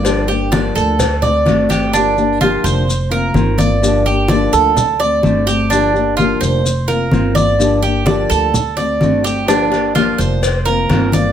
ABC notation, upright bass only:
X:1
M:4/4
L:1/8
Q:1/4=127
K:Gm
V:1 name="Upright bass" clef=bass
G,,,3 D,,3 G,,,2- | G,,,3 F,,,3 G,,,2- | G,,,3 D,,3 G,,,2- | G,,,3 F,,,3 G,,,2- |
G,,,3 D,,3 G,,,2- | G,,,3 F,,,3 G,,,2 |]